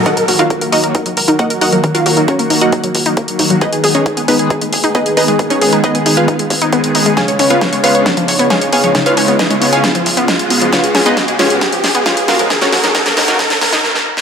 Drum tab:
HH |xxoxxxoxxxoxxxox|xxoxxxoxxxoxxxox|xxoxxxoxxxoxxxox|xxoxxxoxxxoxxxox|
SD |----------------|----------------|----------------|----------------|
BD |o---o---o---o---|o---o---o---o---|o---o---o---o---|o---o---o-o-o---|

HH |xxoxxxoxxxoxxxox|xxoxxxoxxxoxxxox|xxoxxxoxxxoxxxox|xxoxxxoxxxox----|
SD |o---o---o---o---|o---o---o---o---|o-o-o-o-o-o-o-o-|oooooooooooooo-o|
BD |o---o---o---o---|o---o---o---o---|o---o---o---o---|o---o---o-o-----|